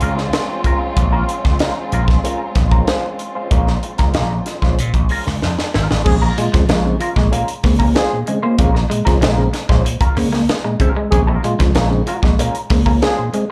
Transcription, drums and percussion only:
0.01 closed hi-hat
0.18 snare
0.33 snare, closed hi-hat
0.64 kick, closed hi-hat
0.97 kick, closed hi-hat
1.29 closed hi-hat
1.45 kick, snare
1.59 snare, closed hi-hat
1.92 closed hi-hat
2.08 kick, snare
2.25 closed hi-hat
2.55 kick, snare, closed hi-hat
2.71 kick
2.87 snare, closed hi-hat
3.19 closed hi-hat
3.51 kick, closed hi-hat
3.67 snare
3.83 closed hi-hat
3.98 kick, snare, closed hi-hat
4.14 snare, closed hi-hat
4.46 snare, closed hi-hat
4.62 kick, snare
4.79 closed hi-hat
4.94 kick, closed hi-hat
5.09 open hi-hat
5.27 snare
5.42 snare
5.59 snare
5.74 snare
5.91 snare
6.06 kick, crash
6.38 closed hi-hat
6.54 kick, snare, closed hi-hat
6.69 snare, closed hi-hat
7.01 closed hi-hat
7.16 kick, snare
7.33 closed hi-hat
7.48 closed hi-hat
7.64 kick, snare, open hi-hat
7.80 kick
7.96 snare, closed hi-hat
8.27 closed hi-hat
8.58 kick, closed hi-hat
8.75 snare
8.91 closed hi-hat
9.07 kick, snare, closed hi-hat
9.22 snare, closed hi-hat
9.54 snare, closed hi-hat
9.69 kick, snare
9.86 closed hi-hat
10.01 kick, closed hi-hat
10.17 open hi-hat
10.34 snare
10.49 snare, closed hi-hat
10.80 kick, closed hi-hat
11.12 kick, closed hi-hat
11.44 closed hi-hat
11.60 kick, snare, closed hi-hat
11.75 snare, closed hi-hat
12.07 closed hi-hat
12.23 kick, snare
12.39 closed hi-hat
12.55 closed hi-hat
12.70 kick, snare, open hi-hat
12.86 kick
13.02 snare, closed hi-hat
13.34 closed hi-hat

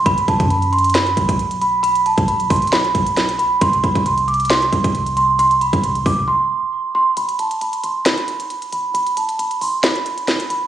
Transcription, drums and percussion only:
0.06 kick, closed hi-hat
0.18 closed hi-hat
0.28 kick, closed hi-hat
0.40 kick, closed hi-hat
0.50 closed hi-hat
0.62 closed hi-hat
0.73 closed hi-hat
0.79 closed hi-hat
0.84 closed hi-hat
0.90 closed hi-hat
0.95 snare, closed hi-hat
1.07 closed hi-hat
1.17 kick, closed hi-hat
1.29 kick, closed hi-hat
1.39 closed hi-hat
1.51 closed hi-hat
1.61 closed hi-hat
1.84 closed hi-hat
1.95 closed hi-hat
2.06 closed hi-hat
2.18 kick, closed hi-hat
2.28 closed hi-hat
2.40 closed hi-hat
2.50 kick, closed hi-hat, open hi-hat
2.56 closed hi-hat
2.62 closed hi-hat
2.67 closed hi-hat
2.73 snare, closed hi-hat
2.84 closed hi-hat
2.95 kick, closed hi-hat
3.07 closed hi-hat
3.17 snare, closed hi-hat
3.29 closed hi-hat
3.39 closed hi-hat
3.61 kick, closed hi-hat
3.73 closed hi-hat
3.84 kick, closed hi-hat
3.95 kick, closed hi-hat
4.06 closed hi-hat
4.18 closed hi-hat
4.28 closed hi-hat
4.34 closed hi-hat
4.40 closed hi-hat
4.45 closed hi-hat
4.50 snare, closed hi-hat
4.62 closed hi-hat
4.72 kick, closed hi-hat
4.84 kick, closed hi-hat
4.95 closed hi-hat
5.06 closed hi-hat
5.17 closed hi-hat
5.39 closed hi-hat
5.51 closed hi-hat
5.61 closed hi-hat
5.73 kick, closed hi-hat
5.84 closed hi-hat
5.95 closed hi-hat
6.06 kick, open hi-hat
7.17 closed hi-hat
7.29 closed hi-hat
7.39 closed hi-hat
7.51 closed hi-hat
7.61 closed hi-hat
7.73 closed hi-hat
7.84 closed hi-hat
8.06 snare, closed hi-hat
8.18 closed hi-hat
8.28 closed hi-hat
8.40 closed hi-hat
8.50 closed hi-hat
8.62 closed hi-hat
8.73 closed hi-hat
8.95 closed hi-hat
9.07 closed hi-hat
9.17 closed hi-hat
9.29 closed hi-hat
9.39 closed hi-hat
9.51 closed hi-hat
9.61 open hi-hat
9.84 snare, closed hi-hat
9.95 closed hi-hat
10.06 closed hi-hat
10.18 closed hi-hat
10.28 snare, closed hi-hat
10.40 closed hi-hat
10.50 closed hi-hat

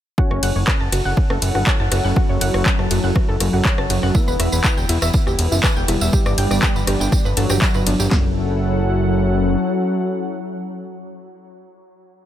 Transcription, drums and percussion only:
0.18 kick
0.31 cross-stick
0.43 closed hi-hat, ride
0.68 kick, cross-stick, clap
0.92 cross-stick, closed hi-hat, ride
1.17 kick
1.30 cross-stick
1.42 closed hi-hat, ride
1.55 cross-stick
1.67 kick, clap
1.92 cross-stick, closed hi-hat, ride
2.16 kick, cross-stick
2.41 closed hi-hat, ride
2.54 cross-stick
2.66 kick, clap
2.79 cross-stick
2.91 closed hi-hat, ride
3.16 kick, cross-stick
3.40 cross-stick, closed hi-hat, ride
3.65 kick, clap
3.78 cross-stick
3.90 closed hi-hat, ride
4.03 cross-stick
4.15 kick, tambourine
4.28 tambourine
4.40 cross-stick, closed hi-hat, ride
4.52 tambourine
4.64 kick, cross-stick, clap, tambourine
4.77 tambourine
4.89 closed hi-hat, ride
5.02 cross-stick, tambourine
5.13 kick, tambourine
5.27 cross-stick, tambourine
5.39 closed hi-hat, ride
5.52 tambourine
5.63 kick, cross-stick, clap, tambourine
5.76 tambourine
5.88 cross-stick, closed hi-hat, ride
6.01 tambourine
6.13 kick, tambourine
6.26 cross-stick, tambourine
6.38 closed hi-hat, ride
6.51 cross-stick, tambourine
6.63 kick, clap, tambourine
6.76 tambourine
6.87 cross-stick, closed hi-hat, ride
7.01 tambourine
7.12 kick, cross-stick, tambourine
7.26 tambourine
7.37 closed hi-hat, ride
7.50 cross-stick, tambourine
7.62 kick, clap, tambourine
7.74 cross-stick, tambourine
7.87 closed hi-hat, ride
8.00 tambourine
8.11 kick, snare, clap

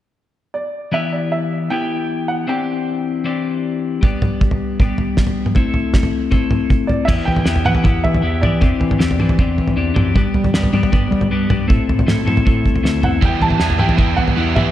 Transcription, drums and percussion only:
4.03 kick, floor tom
4.22 floor tom, mid tom
4.41 kick
4.51 floor tom
4.80 kick, floor tom
4.98 floor tom
5.17 kick, snare
5.27 floor tom
5.46 mid tom
5.55 kick, floor tom
5.74 floor tom
5.94 kick, snare
6.03 floor tom
6.32 kick, floor tom
6.51 floor tom, mid tom
6.70 kick, high tom
6.89 floor tom
7.08 kick, floor tom, crash
7.28 floor tom
7.36 floor tom
7.46 snare
7.56 floor tom
7.65 mid tom
7.75 floor tom
7.84 kick, floor tom
8.05 floor tom
8.14 floor tom
8.43 floor tom, mid tom
8.61 kick, floor tom
8.81 floor tom
8.91 floor tom
9.00 snare
9.11 floor tom
9.20 mid tom
9.29 floor tom
9.39 kick, floor tom
9.58 floor tom
9.68 floor tom
9.96 floor tom, mid tom
10.15 kick, floor tom
10.34 floor tom
10.44 floor tom
10.54 snare
10.63 floor tom
10.74 mid tom
10.83 floor tom
10.93 kick, floor tom
11.12 floor tom
11.21 floor tom
11.50 floor tom, mid tom
11.70 kick, floor tom
11.89 floor tom
11.99 floor tom
12.08 snare, mid tom
12.28 mid tom
12.37 floor tom
12.47 kick, floor tom
12.66 kick
12.76 floor tom
12.85 snare
13.03 floor tom
13.22 kick, floor tom
13.42 floor tom
13.50 floor tom
13.60 snare
13.70 floor tom
13.79 mid tom
13.89 floor tom
13.98 kick, floor tom
14.18 floor tom
14.28 floor tom
14.56 floor tom, mid tom

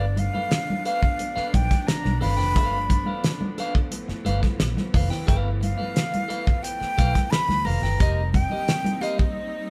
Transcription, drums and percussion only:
0.17 closed hi-hat, muted conga, high conga
0.35 high conga
0.51 snare, closed hi-hat, muted conga
0.70 high conga
0.85 closed hi-hat
1.03 kick
1.19 closed hi-hat, muted conga
1.37 snare
1.54 kick, closed hi-hat, muted conga, high conga
1.71 kick, snare, closed hi-hat, high conga
1.88 snare, closed hi-hat, muted conga
2.05 snare, high conga
2.21 open hi-hat, low conga
2.38 snare, low conga
2.54 kick, closed hi-hat, muted conga
2.89 kick, closed hi-hat, high conga
3.06 high conga
3.24 snare, closed hi-hat
3.41 high conga
3.58 closed hi-hat, muted conga
3.75 kick
3.91 closed hi-hat, muted conga
4.09 snare
4.25 closed hi-hat, muted conga, high conga
4.43 kick, snare, high conga
4.60 snare, closed hi-hat, muted conga
4.77 snare, high conga
4.94 kick, open hi-hat, muted conga, low conga
5.11 snare, low conga
5.28 kick, closed hi-hat
5.63 closed hi-hat, muted conga, high conga
5.80 high conga
5.96 snare, closed hi-hat, muted conga
6.14 closed hi-hat, high conga
6.30 closed hi-hat, muted conga
6.47 kick
6.64 closed hi-hat
6.82 snare
6.98 kick, closed hi-hat, high conga
7.15 kick, snare, closed hi-hat, high conga
7.32 snare, closed hi-hat, muted conga
7.49 snare, high conga
7.65 open hi-hat, muted conga, low conga
7.82 snare, low conga
8.00 kick, closed hi-hat
8.33 kick, closed hi-hat, muted conga, high conga
8.50 high conga
8.68 snare, closed hi-hat
8.85 closed hi-hat, high conga
9.01 closed hi-hat, muted conga
9.19 kick

